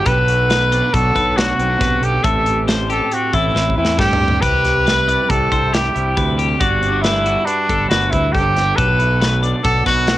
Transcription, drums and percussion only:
0.06 kick, closed hi-hat
0.28 closed hi-hat
0.50 snare, closed hi-hat
0.72 closed hi-hat
0.94 kick, closed hi-hat
1.16 kick, closed hi-hat
1.38 snare, closed hi-hat
1.60 closed hi-hat
1.81 kick, snare, closed hi-hat
2.03 closed hi-hat
2.25 kick, closed hi-hat
2.46 closed hi-hat
2.68 snare, closed hi-hat
2.90 closed hi-hat
3.11 closed hi-hat
3.33 kick, closed hi-hat
3.56 snare
3.70 kick
3.85 snare
3.99 kick, snare
4.13 floor tom
4.28 floor tom
4.43 kick, closed hi-hat, splash
4.65 snare, closed hi-hat
4.87 snare, closed hi-hat
5.08 closed hi-hat
5.30 kick, closed hi-hat
5.52 kick, closed hi-hat
5.74 snare, closed hi-hat
5.95 closed hi-hat
6.17 kick, closed hi-hat
6.39 closed hi-hat
6.60 kick, closed hi-hat
6.82 closed hi-hat
7.04 snare, closed hi-hat
7.26 closed hi-hat
7.47 closed hi-hat
7.69 kick, closed hi-hat
7.91 snare, closed hi-hat
8.12 kick, closed hi-hat
8.34 kick, closed hi-hat
8.56 snare, closed hi-hat
8.78 kick, closed hi-hat
9.00 closed hi-hat
9.21 snare, closed hi-hat
9.43 closed hi-hat
9.64 kick, closed hi-hat
9.86 kick, snare, closed hi-hat
10.07 snare, closed hi-hat

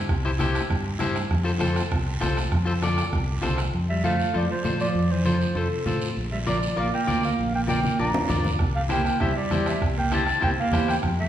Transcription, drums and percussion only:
0.08 bombo low, bombo rim, high conga, long guiro
0.40 bombo rim, high conga, short guiro
0.55 bombo rim, short guiro
0.69 bombo low, bombo rim, high conga, long guiro
1.00 bombo rim, high conga, short guiro
1.16 bombo rim, short guiro
1.31 bombo low, bombo rim, high conga, long guiro
1.61 bombo rim, high conga, short guiro
1.76 bombo rim, short guiro
1.92 bombo low, bombo rim, high conga, long guiro
2.21 bombo rim, high conga, short guiro
2.37 bombo rim, short guiro
2.52 bombo low, bombo rim, high conga, long guiro
2.83 bombo rim, high conga, short guiro
2.98 bombo rim, short guiro
3.13 bombo low, bombo rim, high conga, long guiro
3.43 bombo rim, high conga, short guiro
3.58 bombo rim, short guiro
3.74 high conga, long guiro
4.04 high conga, short guiro
4.20 short guiro
4.34 high conga, long guiro
4.64 high conga, short guiro
4.80 short guiro
4.95 high conga, long guiro
5.25 high conga, short guiro
5.41 short guiro
5.55 high conga, long guiro
5.86 high conga, short guiro
6.01 short guiro
6.17 high conga, long guiro
6.47 high conga, short guiro
6.63 short guiro
6.77 high conga, long guiro
7.08 high conga, short guiro
7.23 short guiro
7.38 high conga, long guiro
7.68 high conga, short guiro
7.83 high conga, short guiro
8.00 long guiro
8.14 low conga
8.30 low conga, short guiro
8.44 low conga, short guiro
8.59 bombo low, bombo rim, high conga, long guiro
8.90 bombo rim, high conga, short guiro
9.05 bombo rim, short guiro
9.20 bombo low, bombo rim, high conga, long guiro
9.51 bombo rim, high conga, short guiro
9.66 bombo rim, short guiro
9.81 bombo low, bombo rim, high conga, long guiro
10.11 bombo rim, high conga, short guiro
10.27 bombo rim, short guiro
10.42 bombo low, bombo rim, high conga, long guiro
10.71 bombo low, bombo rim, high conga, short guiro
10.88 bombo rim, short guiro
11.03 bombo low, bombo rim, high conga, long guiro

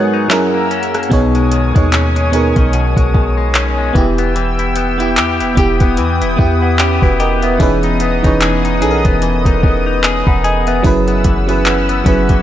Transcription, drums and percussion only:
0.31 clap, closed hi-hat
0.71 closed hi-hat
0.83 closed hi-hat
0.94 cross-stick, closed hi-hat
1.03 closed hi-hat
1.12 kick, closed hi-hat
1.35 closed hi-hat
1.52 closed hi-hat
1.76 kick, closed hi-hat
1.92 clap, closed hi-hat
2.16 closed hi-hat
2.33 closed hi-hat
2.56 kick, closed hi-hat
2.73 closed hi-hat
2.97 kick, closed hi-hat
3.15 kick
3.55 clap, closed hi-hat
3.95 kick, closed hi-hat
4.18 closed hi-hat
4.36 closed hi-hat
4.59 closed hi-hat
4.76 closed hi-hat
5.00 closed hi-hat
5.16 clap, closed hi-hat
5.40 closed hi-hat
5.57 kick, closed hi-hat
5.80 kick, closed hi-hat
5.97 closed hi-hat
6.22 closed hi-hat
6.39 kick
6.79 clap, closed hi-hat
7.02 kick
7.20 closed hi-hat
7.42 closed hi-hat
7.60 kick, closed hi-hat
7.83 closed hi-hat
8.00 closed hi-hat
8.24 kick, closed hi-hat
8.41 clap, closed hi-hat
8.65 closed hi-hat
8.82 closed hi-hat
9.05 kick, closed hi-hat
9.22 closed hi-hat
9.46 kick, closed hi-hat
9.63 kick
10.04 clap, closed hi-hat
10.27 kick
10.44 closed hi-hat
10.67 closed hi-hat
10.84 kick, closed hi-hat
11.08 closed hi-hat
11.24 kick, closed hi-hat
11.49 closed hi-hat
11.65 clap, closed hi-hat
11.89 closed hi-hat
12.06 kick, closed hi-hat
12.29 kick, closed hi-hat

